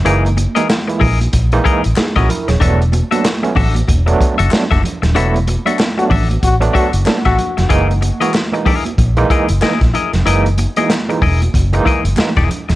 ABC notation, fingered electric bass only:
X:1
M:4/4
L:1/16
Q:"Swing 16ths" 1/4=94
K:F#mix
V:1 name="Fingered electric bass" clef=bass
F,,,3 z3 A,,,2 A,,,2 z =A,,, z ^A,,, z D,,, | E,,,3 z3 =A,,,2 E,,,2 z F,,, z F,,, z D,,, | E,,,3 z3 =A,,,2 A,,,2 z F,,, z A,,, z ^E,,, | F,,,3 z4 z A,,,2 z F,,, z A,,, z ^E,,, |
F,,,3 z3 E,,,2 F,,,2 z F,,, z E,,, z D,,, |]